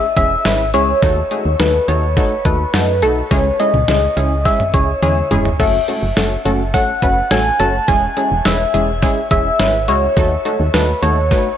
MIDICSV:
0, 0, Header, 1, 5, 480
1, 0, Start_track
1, 0, Key_signature, 4, "minor"
1, 0, Tempo, 571429
1, 861, Time_signature, 4, 2, 24, 8
1, 9722, End_track
2, 0, Start_track
2, 0, Title_t, "Soft synth lead"
2, 0, Program_c, 0, 80
2, 0, Note_on_c, 0, 76, 105
2, 124, Note_off_c, 0, 76, 0
2, 141, Note_on_c, 0, 76, 110
2, 588, Note_off_c, 0, 76, 0
2, 621, Note_on_c, 0, 73, 112
2, 1308, Note_off_c, 0, 73, 0
2, 1341, Note_on_c, 0, 71, 94
2, 1582, Note_on_c, 0, 73, 107
2, 1594, Note_off_c, 0, 71, 0
2, 2061, Note_on_c, 0, 71, 94
2, 2074, Note_off_c, 0, 73, 0
2, 2542, Note_on_c, 0, 69, 91
2, 2555, Note_off_c, 0, 71, 0
2, 2777, Note_off_c, 0, 69, 0
2, 2782, Note_on_c, 0, 73, 98
2, 3022, Note_on_c, 0, 75, 105
2, 3034, Note_off_c, 0, 73, 0
2, 3742, Note_on_c, 0, 76, 105
2, 3755, Note_off_c, 0, 75, 0
2, 3981, Note_on_c, 0, 73, 90
2, 3994, Note_off_c, 0, 76, 0
2, 4217, Note_off_c, 0, 73, 0
2, 4222, Note_on_c, 0, 73, 95
2, 4557, Note_off_c, 0, 73, 0
2, 4702, Note_on_c, 0, 76, 97
2, 5388, Note_off_c, 0, 76, 0
2, 5661, Note_on_c, 0, 78, 108
2, 6141, Note_on_c, 0, 80, 105
2, 6153, Note_off_c, 0, 78, 0
2, 6381, Note_on_c, 0, 81, 109
2, 6394, Note_off_c, 0, 80, 0
2, 6622, Note_on_c, 0, 80, 116
2, 6634, Note_off_c, 0, 81, 0
2, 7097, Note_off_c, 0, 80, 0
2, 7102, Note_on_c, 0, 76, 106
2, 7788, Note_off_c, 0, 76, 0
2, 7822, Note_on_c, 0, 76, 109
2, 8302, Note_on_c, 0, 73, 110
2, 8315, Note_off_c, 0, 76, 0
2, 9021, Note_on_c, 0, 71, 92
2, 9034, Note_off_c, 0, 73, 0
2, 9261, Note_on_c, 0, 73, 103
2, 9274, Note_off_c, 0, 71, 0
2, 9722, Note_off_c, 0, 73, 0
2, 9722, End_track
3, 0, Start_track
3, 0, Title_t, "Analog polysynth"
3, 0, Program_c, 1, 90
3, 141, Note_on_c, 1, 56, 76
3, 141, Note_on_c, 1, 64, 69
3, 141, Note_on_c, 1, 68, 82
3, 142, Note_on_c, 1, 61, 67
3, 288, Note_off_c, 1, 56, 0
3, 288, Note_off_c, 1, 61, 0
3, 288, Note_off_c, 1, 64, 0
3, 288, Note_off_c, 1, 68, 0
3, 381, Note_on_c, 1, 56, 95
3, 381, Note_on_c, 1, 61, 89
3, 381, Note_on_c, 1, 64, 86
3, 381, Note_on_c, 1, 71, 105
3, 527, Note_off_c, 1, 56, 0
3, 527, Note_off_c, 1, 64, 0
3, 527, Note_off_c, 1, 71, 0
3, 528, Note_off_c, 1, 61, 0
3, 621, Note_on_c, 1, 56, 97
3, 621, Note_on_c, 1, 61, 91
3, 621, Note_on_c, 1, 64, 87
3, 621, Note_on_c, 1, 68, 109
3, 767, Note_off_c, 1, 56, 0
3, 767, Note_off_c, 1, 61, 0
3, 767, Note_off_c, 1, 64, 0
3, 767, Note_off_c, 1, 68, 0
3, 861, Note_on_c, 1, 57, 97
3, 861, Note_on_c, 1, 63, 86
3, 861, Note_on_c, 1, 66, 86
3, 861, Note_on_c, 1, 69, 108
3, 1007, Note_off_c, 1, 57, 0
3, 1007, Note_off_c, 1, 63, 0
3, 1007, Note_off_c, 1, 66, 0
3, 1007, Note_off_c, 1, 69, 0
3, 1100, Note_on_c, 1, 57, 73
3, 1100, Note_on_c, 1, 66, 67
3, 1100, Note_on_c, 1, 68, 80
3, 1101, Note_on_c, 1, 63, 67
3, 1247, Note_off_c, 1, 57, 0
3, 1247, Note_off_c, 1, 63, 0
3, 1247, Note_off_c, 1, 66, 0
3, 1247, Note_off_c, 1, 68, 0
3, 1340, Note_on_c, 1, 66, 70
3, 1341, Note_on_c, 1, 57, 77
3, 1341, Note_on_c, 1, 63, 69
3, 1341, Note_on_c, 1, 69, 84
3, 1487, Note_off_c, 1, 57, 0
3, 1487, Note_off_c, 1, 63, 0
3, 1487, Note_off_c, 1, 66, 0
3, 1487, Note_off_c, 1, 69, 0
3, 1581, Note_on_c, 1, 57, 74
3, 1581, Note_on_c, 1, 63, 68
3, 1581, Note_on_c, 1, 66, 65
3, 1581, Note_on_c, 1, 69, 83
3, 1727, Note_off_c, 1, 57, 0
3, 1727, Note_off_c, 1, 63, 0
3, 1727, Note_off_c, 1, 66, 0
3, 1727, Note_off_c, 1, 69, 0
3, 1821, Note_on_c, 1, 57, 78
3, 1821, Note_on_c, 1, 63, 73
3, 1821, Note_on_c, 1, 66, 70
3, 1821, Note_on_c, 1, 69, 88
3, 1967, Note_off_c, 1, 57, 0
3, 1967, Note_off_c, 1, 63, 0
3, 1967, Note_off_c, 1, 66, 0
3, 1967, Note_off_c, 1, 69, 0
3, 2061, Note_on_c, 1, 57, 75
3, 2061, Note_on_c, 1, 63, 67
3, 2061, Note_on_c, 1, 66, 69
3, 2061, Note_on_c, 1, 69, 83
3, 2207, Note_off_c, 1, 57, 0
3, 2207, Note_off_c, 1, 63, 0
3, 2207, Note_off_c, 1, 66, 0
3, 2207, Note_off_c, 1, 69, 0
3, 2301, Note_on_c, 1, 57, 97
3, 2301, Note_on_c, 1, 63, 86
3, 2301, Note_on_c, 1, 66, 85
3, 2301, Note_on_c, 1, 69, 105
3, 2447, Note_off_c, 1, 57, 0
3, 2447, Note_off_c, 1, 63, 0
3, 2447, Note_off_c, 1, 66, 0
3, 2447, Note_off_c, 1, 69, 0
3, 2541, Note_on_c, 1, 57, 97
3, 2541, Note_on_c, 1, 63, 86
3, 2541, Note_on_c, 1, 66, 90
3, 2541, Note_on_c, 1, 69, 110
3, 2687, Note_off_c, 1, 63, 0
3, 2687, Note_off_c, 1, 66, 0
3, 2687, Note_off_c, 1, 69, 0
3, 2688, Note_off_c, 1, 57, 0
3, 2781, Note_on_c, 1, 56, 99
3, 2781, Note_on_c, 1, 61, 88
3, 2781, Note_on_c, 1, 64, 90
3, 2781, Note_on_c, 1, 68, 106
3, 2928, Note_off_c, 1, 56, 0
3, 2928, Note_off_c, 1, 61, 0
3, 2928, Note_off_c, 1, 64, 0
3, 2928, Note_off_c, 1, 68, 0
3, 3021, Note_on_c, 1, 56, 74
3, 3021, Note_on_c, 1, 61, 65
3, 3021, Note_on_c, 1, 64, 66
3, 3021, Note_on_c, 1, 68, 81
3, 3168, Note_off_c, 1, 56, 0
3, 3168, Note_off_c, 1, 61, 0
3, 3168, Note_off_c, 1, 64, 0
3, 3168, Note_off_c, 1, 68, 0
3, 3261, Note_on_c, 1, 56, 80
3, 3261, Note_on_c, 1, 61, 69
3, 3261, Note_on_c, 1, 64, 68
3, 3261, Note_on_c, 1, 68, 88
3, 3407, Note_off_c, 1, 56, 0
3, 3407, Note_off_c, 1, 61, 0
3, 3407, Note_off_c, 1, 68, 0
3, 3408, Note_off_c, 1, 64, 0
3, 3501, Note_on_c, 1, 56, 71
3, 3501, Note_on_c, 1, 61, 69
3, 3501, Note_on_c, 1, 64, 66
3, 3501, Note_on_c, 1, 68, 85
3, 3648, Note_off_c, 1, 56, 0
3, 3648, Note_off_c, 1, 61, 0
3, 3648, Note_off_c, 1, 64, 0
3, 3648, Note_off_c, 1, 68, 0
3, 3741, Note_on_c, 1, 56, 77
3, 3741, Note_on_c, 1, 61, 72
3, 3741, Note_on_c, 1, 64, 71
3, 3741, Note_on_c, 1, 68, 83
3, 3888, Note_off_c, 1, 56, 0
3, 3888, Note_off_c, 1, 61, 0
3, 3888, Note_off_c, 1, 64, 0
3, 3888, Note_off_c, 1, 68, 0
3, 3981, Note_on_c, 1, 56, 74
3, 3981, Note_on_c, 1, 61, 71
3, 3981, Note_on_c, 1, 64, 66
3, 3981, Note_on_c, 1, 68, 83
3, 4127, Note_off_c, 1, 56, 0
3, 4127, Note_off_c, 1, 61, 0
3, 4127, Note_off_c, 1, 68, 0
3, 4128, Note_off_c, 1, 64, 0
3, 4221, Note_on_c, 1, 56, 94
3, 4221, Note_on_c, 1, 61, 85
3, 4221, Note_on_c, 1, 64, 88
3, 4221, Note_on_c, 1, 68, 108
3, 4367, Note_off_c, 1, 56, 0
3, 4367, Note_off_c, 1, 61, 0
3, 4367, Note_off_c, 1, 64, 0
3, 4367, Note_off_c, 1, 68, 0
3, 4461, Note_on_c, 1, 56, 99
3, 4461, Note_on_c, 1, 61, 91
3, 4461, Note_on_c, 1, 64, 90
3, 4461, Note_on_c, 1, 68, 109
3, 4607, Note_off_c, 1, 56, 0
3, 4607, Note_off_c, 1, 61, 0
3, 4607, Note_off_c, 1, 64, 0
3, 4607, Note_off_c, 1, 68, 0
3, 4700, Note_on_c, 1, 61, 90
3, 4701, Note_on_c, 1, 57, 95
3, 4701, Note_on_c, 1, 66, 86
3, 4701, Note_on_c, 1, 69, 109
3, 4847, Note_off_c, 1, 57, 0
3, 4847, Note_off_c, 1, 61, 0
3, 4847, Note_off_c, 1, 66, 0
3, 4847, Note_off_c, 1, 69, 0
3, 4941, Note_on_c, 1, 57, 70
3, 4941, Note_on_c, 1, 61, 65
3, 4941, Note_on_c, 1, 69, 76
3, 4942, Note_on_c, 1, 66, 64
3, 5088, Note_off_c, 1, 57, 0
3, 5088, Note_off_c, 1, 61, 0
3, 5088, Note_off_c, 1, 66, 0
3, 5088, Note_off_c, 1, 69, 0
3, 5181, Note_on_c, 1, 57, 75
3, 5181, Note_on_c, 1, 61, 71
3, 5181, Note_on_c, 1, 66, 72
3, 5181, Note_on_c, 1, 69, 85
3, 5327, Note_off_c, 1, 66, 0
3, 5327, Note_off_c, 1, 69, 0
3, 5328, Note_off_c, 1, 57, 0
3, 5328, Note_off_c, 1, 61, 0
3, 5421, Note_on_c, 1, 57, 90
3, 5421, Note_on_c, 1, 61, 84
3, 5421, Note_on_c, 1, 66, 83
3, 5421, Note_on_c, 1, 69, 98
3, 5568, Note_off_c, 1, 57, 0
3, 5568, Note_off_c, 1, 61, 0
3, 5568, Note_off_c, 1, 66, 0
3, 5568, Note_off_c, 1, 69, 0
3, 5661, Note_on_c, 1, 57, 79
3, 5661, Note_on_c, 1, 61, 73
3, 5661, Note_on_c, 1, 66, 69
3, 5661, Note_on_c, 1, 69, 89
3, 5807, Note_off_c, 1, 57, 0
3, 5807, Note_off_c, 1, 61, 0
3, 5807, Note_off_c, 1, 66, 0
3, 5807, Note_off_c, 1, 69, 0
3, 5901, Note_on_c, 1, 57, 77
3, 5901, Note_on_c, 1, 61, 70
3, 5901, Note_on_c, 1, 66, 69
3, 5901, Note_on_c, 1, 71, 84
3, 6047, Note_off_c, 1, 57, 0
3, 6047, Note_off_c, 1, 61, 0
3, 6047, Note_off_c, 1, 66, 0
3, 6047, Note_off_c, 1, 71, 0
3, 6141, Note_on_c, 1, 57, 93
3, 6141, Note_on_c, 1, 61, 85
3, 6141, Note_on_c, 1, 66, 84
3, 6141, Note_on_c, 1, 69, 104
3, 6287, Note_off_c, 1, 57, 0
3, 6287, Note_off_c, 1, 61, 0
3, 6287, Note_off_c, 1, 66, 0
3, 6287, Note_off_c, 1, 69, 0
3, 6381, Note_on_c, 1, 57, 97
3, 6381, Note_on_c, 1, 61, 89
3, 6381, Note_on_c, 1, 66, 90
3, 6381, Note_on_c, 1, 69, 107
3, 6527, Note_off_c, 1, 57, 0
3, 6527, Note_off_c, 1, 61, 0
3, 6527, Note_off_c, 1, 66, 0
3, 6527, Note_off_c, 1, 69, 0
3, 6621, Note_on_c, 1, 64, 86
3, 6622, Note_on_c, 1, 56, 92
3, 6622, Note_on_c, 1, 61, 87
3, 6622, Note_on_c, 1, 68, 110
3, 6768, Note_off_c, 1, 56, 0
3, 6768, Note_off_c, 1, 61, 0
3, 6768, Note_off_c, 1, 64, 0
3, 6768, Note_off_c, 1, 68, 0
3, 6861, Note_on_c, 1, 56, 73
3, 6861, Note_on_c, 1, 68, 78
3, 6862, Note_on_c, 1, 61, 65
3, 6862, Note_on_c, 1, 64, 65
3, 7008, Note_off_c, 1, 56, 0
3, 7008, Note_off_c, 1, 61, 0
3, 7008, Note_off_c, 1, 64, 0
3, 7008, Note_off_c, 1, 68, 0
3, 7102, Note_on_c, 1, 56, 80
3, 7102, Note_on_c, 1, 61, 71
3, 7102, Note_on_c, 1, 64, 72
3, 7102, Note_on_c, 1, 71, 85
3, 7248, Note_off_c, 1, 56, 0
3, 7248, Note_off_c, 1, 61, 0
3, 7248, Note_off_c, 1, 64, 0
3, 7248, Note_off_c, 1, 71, 0
3, 7341, Note_on_c, 1, 56, 76
3, 7341, Note_on_c, 1, 61, 69
3, 7341, Note_on_c, 1, 68, 84
3, 7342, Note_on_c, 1, 64, 68
3, 7488, Note_off_c, 1, 56, 0
3, 7488, Note_off_c, 1, 61, 0
3, 7488, Note_off_c, 1, 64, 0
3, 7488, Note_off_c, 1, 68, 0
3, 7581, Note_on_c, 1, 56, 80
3, 7581, Note_on_c, 1, 61, 74
3, 7581, Note_on_c, 1, 64, 73
3, 7581, Note_on_c, 1, 68, 88
3, 7727, Note_off_c, 1, 56, 0
3, 7727, Note_off_c, 1, 61, 0
3, 7727, Note_off_c, 1, 64, 0
3, 7727, Note_off_c, 1, 68, 0
3, 7821, Note_on_c, 1, 56, 74
3, 7821, Note_on_c, 1, 61, 72
3, 7821, Note_on_c, 1, 64, 70
3, 7821, Note_on_c, 1, 68, 84
3, 7967, Note_off_c, 1, 56, 0
3, 7967, Note_off_c, 1, 61, 0
3, 7967, Note_off_c, 1, 64, 0
3, 7967, Note_off_c, 1, 68, 0
3, 8061, Note_on_c, 1, 56, 96
3, 8061, Note_on_c, 1, 61, 84
3, 8061, Note_on_c, 1, 64, 88
3, 8061, Note_on_c, 1, 71, 104
3, 8207, Note_off_c, 1, 56, 0
3, 8207, Note_off_c, 1, 61, 0
3, 8207, Note_off_c, 1, 64, 0
3, 8207, Note_off_c, 1, 71, 0
3, 8300, Note_on_c, 1, 56, 94
3, 8300, Note_on_c, 1, 61, 87
3, 8300, Note_on_c, 1, 64, 89
3, 8301, Note_on_c, 1, 66, 110
3, 8447, Note_off_c, 1, 56, 0
3, 8447, Note_off_c, 1, 61, 0
3, 8447, Note_off_c, 1, 64, 0
3, 8447, Note_off_c, 1, 66, 0
3, 8541, Note_on_c, 1, 57, 97
3, 8541, Note_on_c, 1, 63, 87
3, 8541, Note_on_c, 1, 66, 87
3, 8541, Note_on_c, 1, 69, 106
3, 8687, Note_off_c, 1, 57, 0
3, 8687, Note_off_c, 1, 63, 0
3, 8687, Note_off_c, 1, 66, 0
3, 8687, Note_off_c, 1, 69, 0
3, 8781, Note_on_c, 1, 57, 71
3, 8781, Note_on_c, 1, 63, 68
3, 8781, Note_on_c, 1, 66, 67
3, 8781, Note_on_c, 1, 69, 79
3, 8927, Note_off_c, 1, 57, 0
3, 8927, Note_off_c, 1, 63, 0
3, 8927, Note_off_c, 1, 66, 0
3, 8928, Note_off_c, 1, 69, 0
3, 9021, Note_on_c, 1, 57, 78
3, 9021, Note_on_c, 1, 63, 71
3, 9021, Note_on_c, 1, 66, 70
3, 9021, Note_on_c, 1, 69, 88
3, 9167, Note_off_c, 1, 57, 0
3, 9167, Note_off_c, 1, 63, 0
3, 9167, Note_off_c, 1, 66, 0
3, 9167, Note_off_c, 1, 69, 0
3, 9261, Note_on_c, 1, 57, 78
3, 9261, Note_on_c, 1, 63, 68
3, 9261, Note_on_c, 1, 66, 70
3, 9261, Note_on_c, 1, 69, 82
3, 9407, Note_off_c, 1, 57, 0
3, 9407, Note_off_c, 1, 63, 0
3, 9407, Note_off_c, 1, 66, 0
3, 9407, Note_off_c, 1, 69, 0
3, 9501, Note_on_c, 1, 57, 76
3, 9501, Note_on_c, 1, 63, 74
3, 9501, Note_on_c, 1, 66, 74
3, 9501, Note_on_c, 1, 71, 90
3, 9647, Note_off_c, 1, 71, 0
3, 9648, Note_off_c, 1, 57, 0
3, 9648, Note_off_c, 1, 63, 0
3, 9648, Note_off_c, 1, 66, 0
3, 9722, End_track
4, 0, Start_track
4, 0, Title_t, "FM bass"
4, 0, Program_c, 2, 39
4, 140, Note_on_c, 2, 28, 97
4, 308, Note_off_c, 2, 28, 0
4, 381, Note_on_c, 2, 32, 92
4, 621, Note_on_c, 2, 37, 87
4, 634, Note_off_c, 2, 32, 0
4, 789, Note_off_c, 2, 37, 0
4, 861, Note_on_c, 2, 39, 110
4, 1029, Note_off_c, 2, 39, 0
4, 1221, Note_on_c, 2, 39, 98
4, 1305, Note_off_c, 2, 39, 0
4, 1341, Note_on_c, 2, 39, 100
4, 1509, Note_off_c, 2, 39, 0
4, 1581, Note_on_c, 2, 39, 102
4, 1833, Note_off_c, 2, 39, 0
4, 2060, Note_on_c, 2, 39, 97
4, 2228, Note_off_c, 2, 39, 0
4, 2301, Note_on_c, 2, 42, 89
4, 2541, Note_on_c, 2, 35, 94
4, 2554, Note_off_c, 2, 42, 0
4, 2709, Note_off_c, 2, 35, 0
4, 2781, Note_on_c, 2, 37, 112
4, 2949, Note_off_c, 2, 37, 0
4, 3140, Note_on_c, 2, 37, 97
4, 3225, Note_off_c, 2, 37, 0
4, 3261, Note_on_c, 2, 37, 102
4, 3429, Note_off_c, 2, 37, 0
4, 3501, Note_on_c, 2, 37, 96
4, 3753, Note_off_c, 2, 37, 0
4, 3980, Note_on_c, 2, 37, 94
4, 4148, Note_off_c, 2, 37, 0
4, 4221, Note_on_c, 2, 40, 88
4, 4389, Note_off_c, 2, 40, 0
4, 4461, Note_on_c, 2, 28, 92
4, 4629, Note_off_c, 2, 28, 0
4, 4701, Note_on_c, 2, 30, 112
4, 4869, Note_off_c, 2, 30, 0
4, 5061, Note_on_c, 2, 30, 98
4, 5145, Note_off_c, 2, 30, 0
4, 5181, Note_on_c, 2, 30, 107
4, 5349, Note_off_c, 2, 30, 0
4, 5421, Note_on_c, 2, 30, 102
4, 5673, Note_off_c, 2, 30, 0
4, 5900, Note_on_c, 2, 30, 88
4, 6068, Note_off_c, 2, 30, 0
4, 6142, Note_on_c, 2, 33, 91
4, 6310, Note_off_c, 2, 33, 0
4, 6382, Note_on_c, 2, 30, 90
4, 6550, Note_off_c, 2, 30, 0
4, 6621, Note_on_c, 2, 28, 103
4, 6789, Note_off_c, 2, 28, 0
4, 6982, Note_on_c, 2, 28, 103
4, 7066, Note_off_c, 2, 28, 0
4, 7102, Note_on_c, 2, 28, 99
4, 7270, Note_off_c, 2, 28, 0
4, 7342, Note_on_c, 2, 28, 97
4, 7594, Note_off_c, 2, 28, 0
4, 7820, Note_on_c, 2, 28, 96
4, 7989, Note_off_c, 2, 28, 0
4, 8061, Note_on_c, 2, 32, 98
4, 8302, Note_on_c, 2, 37, 91
4, 8314, Note_off_c, 2, 32, 0
4, 8469, Note_off_c, 2, 37, 0
4, 8541, Note_on_c, 2, 39, 105
4, 8709, Note_off_c, 2, 39, 0
4, 8901, Note_on_c, 2, 39, 100
4, 8985, Note_off_c, 2, 39, 0
4, 9021, Note_on_c, 2, 39, 97
4, 9189, Note_off_c, 2, 39, 0
4, 9261, Note_on_c, 2, 39, 101
4, 9513, Note_off_c, 2, 39, 0
4, 9722, End_track
5, 0, Start_track
5, 0, Title_t, "Drums"
5, 139, Note_on_c, 9, 42, 79
5, 140, Note_on_c, 9, 36, 87
5, 223, Note_off_c, 9, 42, 0
5, 224, Note_off_c, 9, 36, 0
5, 379, Note_on_c, 9, 38, 115
5, 382, Note_on_c, 9, 42, 73
5, 463, Note_off_c, 9, 38, 0
5, 466, Note_off_c, 9, 42, 0
5, 619, Note_on_c, 9, 42, 74
5, 703, Note_off_c, 9, 42, 0
5, 861, Note_on_c, 9, 36, 113
5, 861, Note_on_c, 9, 42, 80
5, 945, Note_off_c, 9, 36, 0
5, 945, Note_off_c, 9, 42, 0
5, 1100, Note_on_c, 9, 42, 73
5, 1184, Note_off_c, 9, 42, 0
5, 1340, Note_on_c, 9, 42, 78
5, 1341, Note_on_c, 9, 38, 105
5, 1424, Note_off_c, 9, 42, 0
5, 1425, Note_off_c, 9, 38, 0
5, 1582, Note_on_c, 9, 42, 76
5, 1666, Note_off_c, 9, 42, 0
5, 1820, Note_on_c, 9, 42, 75
5, 1821, Note_on_c, 9, 36, 86
5, 1904, Note_off_c, 9, 42, 0
5, 1905, Note_off_c, 9, 36, 0
5, 2059, Note_on_c, 9, 42, 82
5, 2060, Note_on_c, 9, 36, 91
5, 2143, Note_off_c, 9, 42, 0
5, 2144, Note_off_c, 9, 36, 0
5, 2299, Note_on_c, 9, 38, 114
5, 2302, Note_on_c, 9, 42, 71
5, 2383, Note_off_c, 9, 38, 0
5, 2386, Note_off_c, 9, 42, 0
5, 2539, Note_on_c, 9, 42, 74
5, 2623, Note_off_c, 9, 42, 0
5, 2781, Note_on_c, 9, 36, 114
5, 2781, Note_on_c, 9, 42, 79
5, 2865, Note_off_c, 9, 36, 0
5, 2865, Note_off_c, 9, 42, 0
5, 3021, Note_on_c, 9, 42, 76
5, 3105, Note_off_c, 9, 42, 0
5, 3141, Note_on_c, 9, 47, 91
5, 3225, Note_off_c, 9, 47, 0
5, 3260, Note_on_c, 9, 42, 78
5, 3261, Note_on_c, 9, 38, 106
5, 3344, Note_off_c, 9, 42, 0
5, 3345, Note_off_c, 9, 38, 0
5, 3502, Note_on_c, 9, 42, 72
5, 3586, Note_off_c, 9, 42, 0
5, 3741, Note_on_c, 9, 36, 86
5, 3741, Note_on_c, 9, 42, 74
5, 3825, Note_off_c, 9, 36, 0
5, 3825, Note_off_c, 9, 42, 0
5, 3863, Note_on_c, 9, 45, 82
5, 3947, Note_off_c, 9, 45, 0
5, 3979, Note_on_c, 9, 42, 81
5, 3980, Note_on_c, 9, 36, 90
5, 4063, Note_off_c, 9, 42, 0
5, 4064, Note_off_c, 9, 36, 0
5, 4221, Note_on_c, 9, 48, 55
5, 4222, Note_on_c, 9, 42, 71
5, 4305, Note_off_c, 9, 48, 0
5, 4306, Note_off_c, 9, 42, 0
5, 4460, Note_on_c, 9, 42, 75
5, 4461, Note_on_c, 9, 45, 89
5, 4544, Note_off_c, 9, 42, 0
5, 4545, Note_off_c, 9, 45, 0
5, 4581, Note_on_c, 9, 43, 87
5, 4665, Note_off_c, 9, 43, 0
5, 4701, Note_on_c, 9, 36, 114
5, 4701, Note_on_c, 9, 49, 81
5, 4785, Note_off_c, 9, 36, 0
5, 4785, Note_off_c, 9, 49, 0
5, 4941, Note_on_c, 9, 42, 73
5, 5025, Note_off_c, 9, 42, 0
5, 5180, Note_on_c, 9, 42, 80
5, 5181, Note_on_c, 9, 38, 105
5, 5264, Note_off_c, 9, 42, 0
5, 5265, Note_off_c, 9, 38, 0
5, 5422, Note_on_c, 9, 42, 72
5, 5506, Note_off_c, 9, 42, 0
5, 5661, Note_on_c, 9, 36, 86
5, 5661, Note_on_c, 9, 42, 75
5, 5745, Note_off_c, 9, 36, 0
5, 5745, Note_off_c, 9, 42, 0
5, 5898, Note_on_c, 9, 42, 80
5, 5900, Note_on_c, 9, 36, 88
5, 5982, Note_off_c, 9, 42, 0
5, 5984, Note_off_c, 9, 36, 0
5, 6140, Note_on_c, 9, 38, 116
5, 6143, Note_on_c, 9, 42, 70
5, 6224, Note_off_c, 9, 38, 0
5, 6227, Note_off_c, 9, 42, 0
5, 6380, Note_on_c, 9, 42, 74
5, 6464, Note_off_c, 9, 42, 0
5, 6621, Note_on_c, 9, 36, 116
5, 6621, Note_on_c, 9, 42, 81
5, 6705, Note_off_c, 9, 36, 0
5, 6705, Note_off_c, 9, 42, 0
5, 6861, Note_on_c, 9, 42, 75
5, 6945, Note_off_c, 9, 42, 0
5, 7100, Note_on_c, 9, 42, 80
5, 7101, Note_on_c, 9, 38, 104
5, 7184, Note_off_c, 9, 42, 0
5, 7185, Note_off_c, 9, 38, 0
5, 7342, Note_on_c, 9, 42, 72
5, 7426, Note_off_c, 9, 42, 0
5, 7581, Note_on_c, 9, 36, 86
5, 7581, Note_on_c, 9, 42, 74
5, 7665, Note_off_c, 9, 36, 0
5, 7665, Note_off_c, 9, 42, 0
5, 7819, Note_on_c, 9, 42, 80
5, 7820, Note_on_c, 9, 36, 88
5, 7903, Note_off_c, 9, 42, 0
5, 7904, Note_off_c, 9, 36, 0
5, 8060, Note_on_c, 9, 38, 114
5, 8063, Note_on_c, 9, 42, 70
5, 8144, Note_off_c, 9, 38, 0
5, 8147, Note_off_c, 9, 42, 0
5, 8300, Note_on_c, 9, 42, 74
5, 8384, Note_off_c, 9, 42, 0
5, 8541, Note_on_c, 9, 36, 115
5, 8541, Note_on_c, 9, 42, 80
5, 8625, Note_off_c, 9, 36, 0
5, 8625, Note_off_c, 9, 42, 0
5, 8781, Note_on_c, 9, 42, 74
5, 8865, Note_off_c, 9, 42, 0
5, 9021, Note_on_c, 9, 38, 105
5, 9021, Note_on_c, 9, 42, 77
5, 9105, Note_off_c, 9, 38, 0
5, 9105, Note_off_c, 9, 42, 0
5, 9262, Note_on_c, 9, 42, 74
5, 9346, Note_off_c, 9, 42, 0
5, 9501, Note_on_c, 9, 36, 85
5, 9501, Note_on_c, 9, 42, 77
5, 9585, Note_off_c, 9, 36, 0
5, 9585, Note_off_c, 9, 42, 0
5, 9722, End_track
0, 0, End_of_file